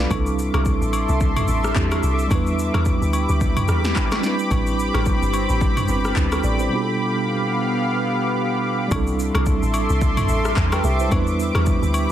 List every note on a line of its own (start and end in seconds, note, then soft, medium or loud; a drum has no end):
0.00 0.10 D4 medium
0.00 0.13 F4 medium
0.00 0.12 A4 medium
0.00 0.26 B4 medium
0.00 0.13 D5 medium
0.00 0.13 F5 medium
0.00 8.87 D6 medium
0.08 0.50 C2 loud
0.08 1.71 G3 medium
0.08 1.72 C4 medium
0.08 1.73 D4 medium
0.08 2.29 A4 medium
0.08 4.19 E5 medium
0.08 2.29 C6 medium
0.08 kick loud
0.08 high agogo medium
0.08 shaker medium
0.13 1.74 E4 medium
0.13 1.75 A4 medium
0.26 shaker soft
0.39 shaker medium
0.54 0.79 C2 medium
0.54 cross-stick medium
0.54 high agogo medium
0.65 kick loud
0.65 shaker medium
0.82 1.06 A1 medium
0.82 shaker medium
0.93 high agogo medium
0.93 shaker medium
1.09 1.44 C2 medium
1.09 shaker soft
1.21 kick loud
1.21 shaker medium
1.36 mid tom medium
1.36 high agogo medium
1.36 shaker medium
1.48 1.73 A1 medium
1.48 shaker medium
1.64 cross-stick medium
1.64 shaker medium
1.74 2.01 E2 loud
1.74 2.26 G3 medium
1.74 2.31 C4 medium
1.74 2.30 D4 medium
1.74 2.32 E4 medium
1.74 2.32 G4 medium
1.74 kick medium
1.74 clap medium
1.74 shaker medium
1.91 cross-stick medium
1.91 high agogo medium
1.91 shaker medium
2.03 2.28 C2 loud
2.03 shaker medium
2.19 shaker medium
2.28 2.70 E2 loud
2.28 4.18 G3 medium
2.28 4.19 B3 medium
2.28 4.20 D4 medium
2.28 8.87 G4 medium
2.28 8.87 B5 medium
2.28 kick loud
2.28 high agogo medium
2.28 shaker medium
2.33 4.21 E4 medium
2.33 4.22 B4 medium
2.46 shaker soft
2.59 shaker medium
2.74 2.99 E2 loud
2.74 cross-stick medium
2.74 high agogo medium
2.85 kick loud
2.85 shaker medium
3.02 3.27 D2 medium
3.02 shaker soft
3.13 high agogo medium
3.13 shaker medium
3.29 3.65 D2 medium
3.29 shaker medium
3.41 kick loud
3.41 shaker medium
3.57 mid tom medium
3.57 high agogo medium
3.57 shaker medium
3.68 3.93 E2 medium
3.68 cross-stick medium
3.68 shaker medium
3.84 snare medium
3.84 shaker medium
3.96 kick medium
3.96 clap medium
3.96 shaker medium
4.11 cross-stick medium
4.11 snare medium
4.11 high agogo medium
4.11 shaker medium
4.20 5.84 G3 medium
4.20 5.85 C4 medium
4.20 6.69 C4 medium
4.20 5.86 D4 medium
4.20 snare medium
4.20 shaker medium
4.26 5.87 E4 medium
4.26 5.88 B4 medium
4.39 shaker medium
4.51 4.91 A1 loud
4.51 kick loud
4.51 high agogo medium
4.51 shaker medium
4.67 shaker soft
4.79 shaker medium
4.94 5.19 A1 medium
4.94 cross-stick medium
4.94 high agogo medium
5.06 kick loud
5.06 shaker medium
5.22 5.47 G1 medium
5.22 shaker medium
5.34 high agogo medium
5.34 shaker medium
5.49 5.85 A1 medium
5.49 shaker medium
5.61 kick loud
5.61 shaker medium
5.77 mid tom medium
5.77 high agogo medium
5.77 shaker medium
5.87 6.14 G1 medium
5.87 6.68 G3 medium
5.87 5.96 B3 soft
5.87 6.16 D4 medium
5.87 6.17 E4 medium
5.87 6.17 B4 medium
5.87 shaker medium
5.95 6.19 C4 medium
6.05 cross-stick medium
6.05 shaker medium
6.16 6.41 D2 medium
6.16 kick medium
6.16 clap medium
6.16 shaker medium
6.32 6.44 C4 medium
6.32 6.43 A4 medium
6.32 cross-stick medium
6.32 high agogo medium
6.32 shaker medium
6.44 6.69 A1 medium
6.44 6.59 D5 medium
6.44 shaker medium
6.59 6.86 E4 medium
6.59 6.86 C5 medium
6.59 shaker medium
6.68 8.86 B2 medium
6.68 8.87 G3 medium
6.68 8.87 B3 medium
6.68 8.89 B3 medium
6.68 8.89 F5 medium
6.72 8.88 D4 medium
6.72 8.89 F4 medium
6.72 6.81 G#4 medium
6.82 8.93 A4 medium
8.88 9.31 C2 loud
8.88 10.52 G3 medium
8.88 10.52 C4 medium
8.88 10.53 D4 medium
8.88 11.09 A4 medium
8.88 12.12 E5 medium
8.88 11.09 C6 medium
8.88 12.12 D6 loud
8.88 kick loud
8.88 high agogo medium
8.88 shaker medium
8.94 10.27 E4 medium
8.94 10.28 A4 medium
9.07 shaker medium
9.20 shaker medium
9.35 9.60 C2 medium
9.35 cross-stick medium
9.35 high agogo medium
9.46 kick loud
9.46 shaker medium
9.63 9.87 A1 medium
9.63 shaker medium
9.74 high agogo medium
9.74 shaker medium
9.89 10.25 C2 medium
9.89 shaker medium
10.01 kick loud
10.01 shaker medium
10.17 mid tom medium
10.17 high agogo medium
10.17 shaker medium
10.29 10.54 A1 medium
10.29 shaker loud
10.45 cross-stick medium
10.45 shaker medium
10.57 10.81 E2 loud
10.57 kick loud
10.57 clap medium
10.57 shaker medium
10.72 10.84 B4 medium
10.72 10.84 G5 medium
10.72 cross-stick medium
10.72 high agogo medium
10.72 shaker medium
10.84 11.09 C2 medium
10.84 11.00 G4 medium
10.84 11.00 E5 medium
10.84 shaker medium
11.00 11.13 E4 medium
11.00 11.27 C5 medium
11.00 shaker medium
11.08 11.51 E2 loud
11.08 12.12 G3 medium
11.08 12.12 B3 medium
11.08 12.12 D4 medium
11.08 12.12 G4 medium
11.08 12.12 B5 medium
11.08 kick loud
11.08 high agogo medium
11.08 shaker medium
11.14 12.12 E4 medium
11.14 12.12 B4 medium
11.27 shaker medium
11.40 shaker medium
11.55 11.80 E2 loud
11.55 cross-stick medium
11.55 high agogo medium
11.66 kick loud
11.66 shaker medium
11.83 12.07 D2 medium
11.83 shaker medium
11.94 high agogo medium
11.94 shaker medium